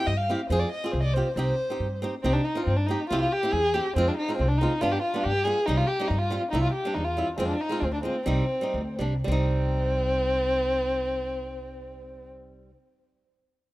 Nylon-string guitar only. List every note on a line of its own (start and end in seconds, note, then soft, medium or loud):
0.00 0.12 C4 medium
0.00 0.12 E4 medium
0.00 0.13 G4 medium
0.29 0.40 C4 medium
0.29 0.40 E4 medium
0.29 0.41 G4 medium
0.50 0.67 C4 medium
0.50 0.67 F4 medium
0.50 0.68 G#4 loud
0.84 1.00 C4 medium
0.84 1.00 F4 medium
0.84 1.01 G#4 medium
1.16 1.27 C4 medium
1.16 1.27 F4 medium
1.16 1.27 G4 medium
1.37 1.53 C4 medium
1.37 1.54 D#4 medium
1.37 1.54 G4 medium
1.70 1.86 C4 medium
1.70 1.86 D#4 medium
1.70 1.87 G4 medium
2.02 2.13 C4 medium
2.02 2.13 D#4 medium
2.02 2.14 G4 medium
2.24 2.40 C4 loud
2.24 2.40 D#4 medium
2.24 2.41 G4 loud
2.55 2.72 C4 medium
2.55 2.73 D#4 medium
2.55 2.73 F4 medium
2.88 2.99 C4 medium
2.88 3.00 D#4 medium
2.88 3.01 G4 medium
3.10 3.27 C4 medium
3.10 3.27 E4 medium
3.10 3.28 G4 loud
3.43 3.59 C4 medium
3.43 3.59 E4 medium
3.43 3.60 G4 medium
3.74 3.85 C4 medium
3.74 3.86 E4 medium
3.74 3.86 G4 medium
3.96 4.12 G#3 medium
3.96 4.13 C4 medium
3.96 4.13 F4 loud
4.28 4.45 G#3 medium
4.28 4.45 C4 medium
4.28 4.45 F4 medium
4.61 4.72 G#3 medium
4.61 4.72 C4 medium
4.61 4.73 F4 medium
4.81 4.98 G3 medium
4.81 4.98 B3 medium
4.81 4.99 D4 loud
5.14 5.30 G3 medium
5.14 5.30 B3 medium
5.14 5.31 D4 medium
5.45 5.56 G3 medium
5.45 5.57 B3 medium
5.45 5.58 F4 medium
5.68 5.84 G3 medium
5.68 5.84 C4 medium
5.68 5.84 D#4 loud
5.99 6.16 G3 medium
5.99 6.16 C4 medium
5.99 6.16 D#4 medium
6.30 6.42 G3 medium
6.30 6.42 C4 medium
6.30 6.43 F4 medium
6.53 6.69 G3 medium
6.53 6.69 C4 medium
6.53 6.70 E4 medium
6.85 7.01 G3 medium
6.85 7.01 C4 medium
6.85 7.02 D4 medium
7.17 7.28 G3 medium
7.17 7.28 C4 medium
7.17 7.28 E4 medium
7.38 7.54 G#3 medium
7.38 7.55 C4 medium
7.38 7.55 F4 loud
7.69 7.86 G#3 medium
7.69 7.87 C4 medium
7.69 7.88 F4 medium
8.03 8.15 G#3 medium
8.03 8.15 C4 medium
8.03 8.16 F4 medium
8.26 8.44 G3 medium
8.26 8.44 C4 medium
8.26 8.45 D#4 medium
8.61 8.80 G3 medium
8.61 8.81 C4 medium
8.61 8.81 D#4 medium
8.99 9.13 G3 medium
8.99 9.14 C4 medium
8.99 9.14 D4 medium
9.24 12.70 G3 medium
9.24 12.73 C4 medium
9.32 12.77 D#4 loud